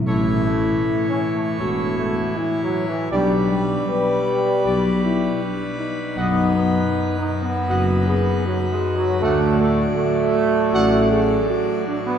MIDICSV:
0, 0, Header, 1, 6, 480
1, 0, Start_track
1, 0, Tempo, 766284
1, 36, Time_signature, 4, 2, 24, 8
1, 2916, Tempo, 759494
1, 7674, End_track
2, 0, Start_track
2, 0, Title_t, "Trumpet section"
2, 0, Program_c, 0, 61
2, 37, Note_on_c, 0, 73, 61
2, 38, Note_on_c, 0, 69, 58
2, 211, Note_off_c, 0, 69, 0
2, 211, Note_off_c, 0, 73, 0
2, 997, Note_on_c, 0, 73, 65
2, 999, Note_on_c, 0, 69, 69
2, 1172, Note_off_c, 0, 73, 0
2, 1173, Note_off_c, 0, 69, 0
2, 1949, Note_on_c, 0, 74, 68
2, 2125, Note_off_c, 0, 74, 0
2, 2914, Note_on_c, 0, 74, 70
2, 3088, Note_off_c, 0, 74, 0
2, 3872, Note_on_c, 0, 75, 66
2, 3873, Note_on_c, 0, 78, 63
2, 4045, Note_off_c, 0, 75, 0
2, 4045, Note_off_c, 0, 78, 0
2, 4828, Note_on_c, 0, 75, 69
2, 4828, Note_on_c, 0, 78, 68
2, 5005, Note_off_c, 0, 75, 0
2, 5005, Note_off_c, 0, 78, 0
2, 5795, Note_on_c, 0, 74, 70
2, 5796, Note_on_c, 0, 78, 69
2, 5967, Note_off_c, 0, 74, 0
2, 5968, Note_off_c, 0, 78, 0
2, 6757, Note_on_c, 0, 78, 82
2, 6760, Note_on_c, 0, 74, 75
2, 6929, Note_off_c, 0, 78, 0
2, 6931, Note_off_c, 0, 74, 0
2, 7674, End_track
3, 0, Start_track
3, 0, Title_t, "French horn section"
3, 0, Program_c, 1, 60
3, 41, Note_on_c, 1, 64, 81
3, 978, Note_off_c, 1, 64, 0
3, 998, Note_on_c, 1, 66, 73
3, 1454, Note_off_c, 1, 66, 0
3, 1477, Note_on_c, 1, 64, 70
3, 1930, Note_off_c, 1, 64, 0
3, 1953, Note_on_c, 1, 62, 76
3, 2410, Note_off_c, 1, 62, 0
3, 2429, Note_on_c, 1, 71, 80
3, 2887, Note_off_c, 1, 71, 0
3, 2909, Note_on_c, 1, 67, 78
3, 3136, Note_off_c, 1, 67, 0
3, 3158, Note_on_c, 1, 64, 66
3, 3380, Note_off_c, 1, 64, 0
3, 3395, Note_on_c, 1, 62, 58
3, 3627, Note_on_c, 1, 63, 81
3, 3634, Note_off_c, 1, 62, 0
3, 4722, Note_off_c, 1, 63, 0
3, 4829, Note_on_c, 1, 66, 72
3, 5056, Note_off_c, 1, 66, 0
3, 5075, Note_on_c, 1, 68, 72
3, 5302, Note_off_c, 1, 68, 0
3, 5321, Note_on_c, 1, 66, 88
3, 6730, Note_off_c, 1, 66, 0
3, 6749, Note_on_c, 1, 66, 80
3, 6975, Note_off_c, 1, 66, 0
3, 6993, Note_on_c, 1, 68, 80
3, 7218, Note_off_c, 1, 68, 0
3, 7232, Note_on_c, 1, 66, 84
3, 7674, Note_off_c, 1, 66, 0
3, 7674, End_track
4, 0, Start_track
4, 0, Title_t, "Pipe organ"
4, 0, Program_c, 2, 19
4, 38, Note_on_c, 2, 52, 58
4, 39, Note_on_c, 2, 45, 61
4, 40, Note_on_c, 2, 73, 60
4, 41, Note_on_c, 2, 64, 60
4, 1933, Note_off_c, 2, 45, 0
4, 1933, Note_off_c, 2, 52, 0
4, 1933, Note_off_c, 2, 73, 0
4, 1934, Note_off_c, 2, 64, 0
4, 1954, Note_on_c, 2, 55, 59
4, 1955, Note_on_c, 2, 74, 61
4, 1956, Note_on_c, 2, 71, 56
4, 1957, Note_on_c, 2, 47, 57
4, 3871, Note_on_c, 2, 63, 58
4, 3872, Note_off_c, 2, 55, 0
4, 3872, Note_off_c, 2, 74, 0
4, 3872, Note_on_c, 2, 42, 61
4, 3873, Note_off_c, 2, 47, 0
4, 3873, Note_on_c, 2, 54, 59
4, 5799, Note_off_c, 2, 42, 0
4, 5799, Note_off_c, 2, 63, 0
4, 5799, Note_off_c, 2, 71, 0
4, 5799, Note_on_c, 2, 62, 67
4, 5800, Note_on_c, 2, 74, 62
4, 5801, Note_on_c, 2, 45, 69
4, 7674, Note_off_c, 2, 45, 0
4, 7674, Note_off_c, 2, 54, 0
4, 7674, Note_off_c, 2, 62, 0
4, 7674, Note_off_c, 2, 74, 0
4, 7674, End_track
5, 0, Start_track
5, 0, Title_t, "Trombone section"
5, 0, Program_c, 3, 61
5, 37, Note_on_c, 3, 57, 91
5, 261, Note_off_c, 3, 57, 0
5, 272, Note_on_c, 3, 57, 89
5, 652, Note_off_c, 3, 57, 0
5, 677, Note_on_c, 3, 61, 95
5, 750, Note_off_c, 3, 61, 0
5, 836, Note_on_c, 3, 57, 84
5, 1214, Note_off_c, 3, 57, 0
5, 1239, Note_on_c, 3, 57, 87
5, 1463, Note_off_c, 3, 57, 0
5, 1477, Note_on_c, 3, 52, 90
5, 1638, Note_off_c, 3, 52, 0
5, 1639, Note_on_c, 3, 54, 89
5, 1786, Note_off_c, 3, 54, 0
5, 1800, Note_on_c, 3, 52, 85
5, 1947, Note_off_c, 3, 52, 0
5, 1953, Note_on_c, 3, 55, 95
5, 2177, Note_off_c, 3, 55, 0
5, 2191, Note_on_c, 3, 55, 87
5, 2417, Note_off_c, 3, 55, 0
5, 2427, Note_on_c, 3, 55, 94
5, 3604, Note_off_c, 3, 55, 0
5, 3866, Note_on_c, 3, 59, 98
5, 4092, Note_off_c, 3, 59, 0
5, 4103, Note_on_c, 3, 59, 90
5, 4483, Note_off_c, 3, 59, 0
5, 4509, Note_on_c, 3, 63, 92
5, 4582, Note_off_c, 3, 63, 0
5, 4661, Note_on_c, 3, 59, 85
5, 5044, Note_off_c, 3, 59, 0
5, 5075, Note_on_c, 3, 59, 87
5, 5302, Note_off_c, 3, 59, 0
5, 5319, Note_on_c, 3, 54, 94
5, 5391, Note_off_c, 3, 54, 0
5, 5479, Note_on_c, 3, 56, 91
5, 5629, Note_off_c, 3, 56, 0
5, 5635, Note_on_c, 3, 54, 95
5, 5786, Note_off_c, 3, 54, 0
5, 5790, Note_on_c, 3, 57, 100
5, 6015, Note_off_c, 3, 57, 0
5, 6031, Note_on_c, 3, 57, 98
5, 6255, Note_off_c, 3, 57, 0
5, 6267, Note_on_c, 3, 57, 115
5, 7446, Note_off_c, 3, 57, 0
5, 7473, Note_on_c, 3, 62, 95
5, 7528, Note_off_c, 3, 62, 0
5, 7594, Note_on_c, 3, 59, 102
5, 7674, Note_off_c, 3, 59, 0
5, 7674, End_track
6, 0, Start_track
6, 0, Title_t, "Tuba"
6, 0, Program_c, 4, 58
6, 32, Note_on_c, 4, 33, 74
6, 436, Note_off_c, 4, 33, 0
6, 994, Note_on_c, 4, 28, 71
6, 1397, Note_off_c, 4, 28, 0
6, 1952, Note_on_c, 4, 35, 77
6, 2354, Note_off_c, 4, 35, 0
6, 2914, Note_on_c, 4, 35, 76
6, 3315, Note_off_c, 4, 35, 0
6, 3868, Note_on_c, 4, 35, 76
6, 4270, Note_off_c, 4, 35, 0
6, 4828, Note_on_c, 4, 30, 73
6, 5235, Note_off_c, 4, 30, 0
6, 5798, Note_on_c, 4, 38, 78
6, 6195, Note_off_c, 4, 38, 0
6, 6757, Note_on_c, 4, 33, 87
6, 7157, Note_off_c, 4, 33, 0
6, 7674, End_track
0, 0, End_of_file